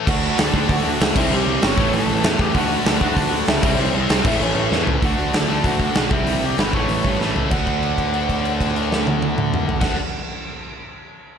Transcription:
0.07 picked electric bass D2, distorted electric guitar D3 A3 D4, lead electric guitar F#4 F#5, kick, crash
0.38 picked electric bass D2, lead electric guitar A4 A5, snare, open hi-hat
0.54 picked electric bass D2, distorted electric guitar D3 A3 D4, kick
0.69 picked electric bass D2, lead electric guitar F#4 F#5, kick, open hi-hat
0.84 picked electric bass D2
1.01 picked electric bass C#2, snare, open hi-hat
1.16 picked electric bass C2, distorted electric guitar C3 G3 C4, lead electric guitar E4 E5, kick, crash
1.31 picked electric bass C2, lead electric guitar G4 G5
1.47 picked electric bass C2
1.62 picked electric bass G1, distorted electric guitar C3 G3 C4, lead electric guitar C#5 C#6, snare, open hi-hat
1.78 picked electric bass A1, distorted electric guitar A2 E3 A3, kick
1.93 picked electric bass A1, lead electric guitar A4 A5, open hi-hat
2.08 picked electric bass A1
2.23 picked electric bass E2, distorted electric guitar A2 E3 A3, snare, open hi-hat
2.39 picked electric bass E2, lead electric guitar G4 G5, kick
2.55 picked electric bass D2, distorted electric guitar D3 A3 D4, lead electric guitar F#4 F#5, kick, open hi-hat
2.85 picked electric bass D2, lead electric guitar A4 A5, snare, open hi-hat
3.01 picked electric bass D2, distorted electric guitar D3 A3 D4, lead electric guitar F#4 F#5, kick
3.16 picked electric bass D2, kick, open hi-hat
3.32 picked electric bass D2
3.47 picked electric bass C#2, lead electric guitar E4 E5, snare, open hi-hat
3.62 picked electric bass C2, distorted electric guitar C3 G3 C4, lead electric guitar E4 E5, kick, crash
3.78 picked electric bass C2, lead electric guitar C4 C5
3.94 picked electric bass C2, lead electric guitar C4 C5
4.09 picked electric bass C2, distorted electric guitar C3 G3 C4, snare, open hi-hat
4.25 picked electric bass A1, distorted electric guitar A2 E3 A3, lead electric guitar E4 E5, kick, crash
4.40 picked electric bass A1, lead electric guitar C#4 C#5
4.55 picked electric bass A1
4.72 picked electric bass E2, distorted electric guitar A2 E3 A3, snare
4.87 picked electric bass C#2, floor tom
5.02 picked electric bass D2, distorted electric guitar D3 A3 D4, lead electric guitar F#4 F#5, kick, open hi-hat
5.18 picked electric bass D2
5.33 picked electric bass D2, lead electric guitar A4 A5, snare, open hi-hat
5.49 picked electric bass D2, distorted electric guitar D3 A3 D4
5.64 picked electric bass D2, lead electric guitar F#4 F#5, kick, open hi-hat
5.80 kick
5.95 picked electric bass B1, distorted electric guitar D3 A3 D4, snare, open hi-hat
6.11 picked electric bass C2, distorted electric guitar C3 G3 C4, lead electric guitar E4 E5, kick
6.26 picked electric bass C2, open hi-hat
6.42 picked electric bass C2, lead electric guitar G4 G5
6.57 picked electric bass G1, distorted electric guitar C3 G3 C4, lead electric guitar B4 B5, snare, open hi-hat
6.73 picked electric bass A1, distorted electric guitar A2 E3 A3, lead electric guitar C#5 C#6, kick
6.88 picked electric bass A1, open hi-hat
7.04 picked electric bass G2, kick
7.20 picked electric bass A1, distorted electric guitar A2 E3 A3, snare
7.36 picked electric bass C#2, floor tom
7.51 picked electric bass D2, distorted electric guitar D3 A3 D4, lead electric guitar F#5, kick, crash
7.67 kick, crash
7.83 crash
7.98 kick, crash
8.14 crash
8.29 kick, crash
8.45 crash
8.61 kick, crash
8.76 crash
8.92 snare
9.07 high tom
9.22 high tom
9.38 mid tom
9.54 mid tom
9.69 floor tom
9.81 picked electric bass D2, distorted electric guitar D3 A3, lead electric guitar F#5, kick, snare, crash
9.85 distorted electric guitar D4

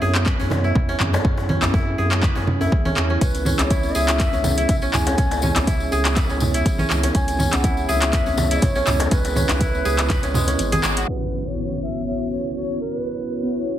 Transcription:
Already playing: analog synth pad B3 C#4 E4 G#4 C#5, kora C#4 E4
0.02 sub bass F#2, kora G#4, djembe tone
0.15 clap
0.26 kora B4, kick, clap, mid tom, djembe tone
0.39 sub bass F#2, kora C#4, djembe bass
0.50 djembe slap, high conga, low conga
0.64 kora E4, djembe tone
0.75 sub bass E2, kick, low conga
0.89 kora C#4, djembe tone
1.00 sub bass F#2, clap, mid tom, high conga
1.13 kora C#4, djembe slap, djembe tone
1.25 sub bass F#2, kora C#4, kick, low conga
1.37 djembe slap
1.49 kora C#4, mid tom, djembe tone, high conga
1.62 sub bass F#2, clap, djembe slap, djembe bass
1.74 kora E4, kick, djembe tone, high conga, low conga
1.98 sub bass F#2, kora G#4, djembe tone
2.11 clap
2.23 kora B4, kick, clap, low conga
2.35 sub bass F#2, kora C#4, djembe slap, djembe tone
2.47 mid tom, low conga
2.61 kora E4, djembe tone
2.72 sub bass C#2, kick, high conga
2.85 kora C#4, high conga, djembe tone
2.96 sub bass E2, clap, high conga
3.10 kora C#4
3.21 sub bass C#2, analog synth pad B3 C#5, kora C#4, bansuri B4, kick, closed hi-hat, tambourine, low conga
3.35 closed hi-hat, tambourine, djembe tone
3.45 kora C#4, mid tom, tambourine, high conga
3.59 sub bass C#2, bansuri E5, clap, closed hi-hat, djembe tone, djembe bass
3.64 bansuri C#5
3.70 kora E4, kick, closed hi-hat, tambourine, high conga
3.83 tambourine, djembe tone
3.95 sub bass C#2, kora G#4, bansuri E5, tambourine
4.08 clap, closed hi-hat, tambourine
4.18 kora B4, kick, clap, closed hi-hat, mid tom, tambourine, djembe tone
4.33 sub bass C#2, kora C#4, tambourine, djembe bass
4.44 tambourine, djembe slap, djembe tone, high conga, low conga
4.58 kora E4, closed hi-hat, tambourine
4.68 sub bass B1, bansuri E5, kick, closed hi-hat, tambourine, djembe tone, low conga
4.82 kora C#4, tambourine
4.93 sub bass C#2, bansuri G#5, clap, mid tom, tambourine, high conga
5.07 kora C#4, closed hi-hat, tambourine, djembe slap, djembe tone
5.18 sub bass C#2, kora C#4, kick, closed hi-hat, tambourine, low conga
5.31 closed hi-hat, tambourine, djembe slap, djembe tone
5.42 kora C#4, mid tom, tambourine, high conga
5.56 sub bass C#2, clap, closed hi-hat, tambourine, djembe slap, djembe tone, djembe bass
5.67 kora E4, kick, closed hi-hat, tambourine, high conga, low conga
5.80 tambourine
5.91 sub bass C#2, kora G#4, tambourine, djembe tone
6.05 clap, closed hi-hat, tambourine
6.17 kora B4, kick, clap, closed hi-hat, tambourine, djembe tone, low conga
6.29 sub bass C#2, kora C#4, tambourine, djembe slap
6.40 mid tom, tambourine, djembe tone, low conga
6.54 kora E4, closed hi-hat, tambourine
6.65 sub bass B1, kick, closed hi-hat, tambourine, high conga
6.78 kora C#4, tambourine, high conga, djembe tone
6.90 sub bass C#2, clap, tambourine, high conga
7.03 kora C#4, closed hi-hat, tambourine, djembe tone
7.15 sub bass C#2, kora C#4, bansuri G#5, kick, closed hi-hat, tambourine, low conga
7.28 closed hi-hat, tambourine, djembe tone
7.39 kora C#4, mid tom, tambourine, high conga
7.53 sub bass C#2, bansuri F#5, clap, closed hi-hat, djembe bass
7.64 kora E4, kick, closed hi-hat, tambourine, high conga, djembe tone
7.77 tambourine
7.89 sub bass C#2, kora G#4, bansuri E5, tambourine, djembe tone
8.02 clap, closed hi-hat
8.13 kora B4, kick, clap, closed hi-hat, mid tom, tambourine, djembe tone
8.26 sub bass C#2, kora C#4, tambourine, djembe bass
8.37 tambourine, djembe slap, high conga, low conga
8.51 kora E4, closed hi-hat, tambourine, djembe tone
8.62 sub bass B1, bansuri C#5, kick, closed hi-hat, tambourine, low conga
8.75 kora C#4, tambourine, djembe tone
8.87 sub bass C#2, clap, mid tom, tambourine, high conga
9.00 kora C#4, closed hi-hat, tambourine, djembe slap, djembe tone
9.11 sub bass C#2, kora C#4, bansuri B4, kick, closed hi-hat, tambourine, low conga
9.25 closed hi-hat, tambourine, djembe slap
9.36 kora C#4, mid tom, tambourine, djembe tone, high conga
9.49 sub bass C#2, clap, closed hi-hat, djembe slap, djembe bass
9.60 kora E4, kick, closed hi-hat, tambourine, djembe tone, high conga, low conga
9.75 tambourine
9.85 sub bass C#2, kora G#4, tambourine, djembe tone
9.98 clap, closed hi-hat, tambourine
10.09 kora B4, kick, clap, closed hi-hat, tambourine, low conga
10.23 sub bass C#2, kora C#4, closed hi-hat, tambourine, djembe slap, djembe tone
10.34 kora G#3, mid tom, tambourine, low conga
10.48 kora C#4, closed hi-hat, tambourine, djembe tone
10.59 sub bass G#1, closed hi-hat, tambourine, high conga
10.72 kora G#4, closed hi-hat, tambourine, djembe tone, high conga
10.83 sub bass G#1, clap, tambourine, high conga
10.97 kora F#4, closed hi-hat, tambourine
11.08 analog synth pad B3 C#4 E4 F#4 C#5, bansuri B4, impact
11.32 tambourine
11.46 analog polysynth B3 E4 F#4 C#5, bansuri C#5, tambourine
11.58 tambourine
11.82 bansuri E5, tambourine
11.95 tambourine
12.07 analog polysynth B3 E4 F#4 C#5, bansuri E5, tambourine
12.20 tambourine
12.31 bansuri C#5, tambourine
12.45 tambourine
12.56 bansuri C#5, tambourine
12.69 analog polysynth B3 E4 F#4 C#5, tambourine
12.80 bansuri A#4, tambourine
12.94 tambourine
12.99 bansuri B4
13.05 tambourine
13.19 tambourine
13.29 tambourine
13.43 analog polysynth B3 E4 F#4 C#5, tambourine
13.54 tambourine
13.68 tambourine

